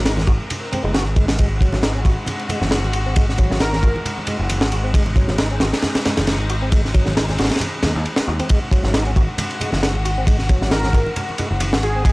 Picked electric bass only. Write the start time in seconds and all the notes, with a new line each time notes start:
Already playing: G#1
0.27 G#1
0.84 F#1
1.06 G#1
1.73 G#1
2.05 G#1
2.61 F#1
2.84 G#1
3.50 G#1
3.83 G#1
4.39 F#1
4.62 G#1
5.29 G#1
5.61 G#1
6.18 F#1
6.40 G#1
7.07 G#1
7.39 G#1
7.84 D#2
7.95 D#2
8.28 D#2
8.84 G#1
9.16 G#1
9.73 F#1
9.95 G#1
10.61 G#1
10.93 G#1
11.51 F#1
11.73 G#1